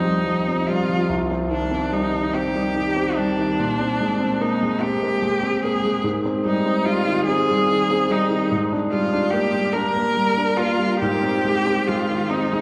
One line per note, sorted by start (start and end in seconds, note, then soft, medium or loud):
0.00 1.05 D#2 soft
0.00 0.26 F3 soft
0.00 0.05 G3 soft
0.00 0.48 C4 soft
0.00 0.69 D#4 soft
0.05 0.39 G3 soft
0.26 0.60 F3 soft
0.48 0.81 C4 soft
0.68 1.02 G3 soft
0.68 1.10 F4 medium
0.89 1.10 F3 soft
1.09 3.54 C2 soft
1.31 1.64 C4 soft
1.51 1.84 D#3 soft
1.51 1.94 D4 soft
1.71 2.05 C4 soft
1.92 2.25 G3 soft
1.92 2.36 D#4 soft
2.14 2.47 D#3 soft
2.34 2.67 C4 soft
2.34 3.18 G4 medium
2.55 2.88 G3 soft
2.76 3.09 D#3 soft
2.96 3.29 C4 soft
3.17 3.51 G3 soft
3.17 4.43 D4 medium
3.38 3.59 D#3 soft
3.59 6.02 A#2 soft
3.80 4.13 C4 soft
4.00 4.34 G#3 soft
4.20 4.54 C4 soft
4.41 4.74 A#3 soft
4.41 4.83 D#4 soft
4.63 4.95 G#3 soft
4.81 5.15 C4 soft
4.81 5.64 G4 medium
5.03 5.35 A#3 soft
5.22 5.55 G#3 soft
5.43 5.76 C4 soft
5.63 5.97 A#3 soft
5.63 6.04 G#4 medium
5.85 6.05 G#3 soft
6.04 8.46 G#2 soft
6.26 6.58 C4 soft
6.45 6.78 G3 soft
6.45 6.87 D#4 medium
6.65 6.98 C4 soft
6.85 7.19 G3 soft
6.85 7.25 F4 medium
7.07 7.40 D#3 soft
7.26 7.61 C4 soft
7.26 8.13 G#4 medium
7.50 7.82 G3 soft
7.70 8.03 D#3 soft
7.90 8.23 C4 soft
8.10 8.43 G3 soft
8.10 8.52 D#4 medium
8.31 8.51 D#3 soft
8.52 10.97 G#2 medium
8.72 9.04 D4 soft
8.92 9.25 G3 soft
8.92 9.32 F4 medium
9.12 9.45 D4 soft
9.30 9.66 A#3 soft
9.30 9.75 G4 medium
9.54 9.87 G3 soft
9.73 10.08 D4 soft
9.73 10.59 A#4 medium
9.97 10.29 A#3 soft
10.17 10.50 G3 soft
10.37 10.71 D4 soft
10.57 10.93 A#3 soft
10.57 10.99 F4 medium
10.79 11.01 G3 soft
11.00 12.61 G#2 soft
11.00 11.89 G4 medium
11.23 11.57 C4 soft
11.45 11.79 G#3 soft
11.67 12.01 C4 soft
11.87 12.23 G#3 soft
11.87 12.32 F4 medium
12.09 12.44 D#3 soft
12.30 12.61 C4 soft
12.30 12.61 D#4 medium
12.53 12.61 G#3 soft